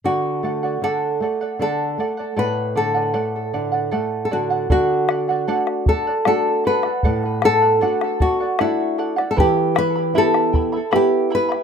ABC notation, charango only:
X:1
M:3/4
L:1/16
Q:1/4=77
K:Dmix
V:1 name="Charango"
[Adf]2 [Adf] [df] [Adf]2 [Adf] [df] [Adf]2 [Adf] [df] | [Adf]2 [Adf] [df] [Adf]2 [Adf] [df] [Adf]2 [Adf] [df] | [Adf]2 [Adf] [df] [Adf]2 [Adf] [df] [Adf]2 [Adf] [df] | [Adf]2 [Adf] [df] [Adf]2 [Adf] [df] [Adf]2 [Adf] [df] |
[EBegb]2 [Eegb] [Eeb] [EBegb]2 [Eegb] [Eeb] [EBegb]2 [Eegb] [Eeb] |]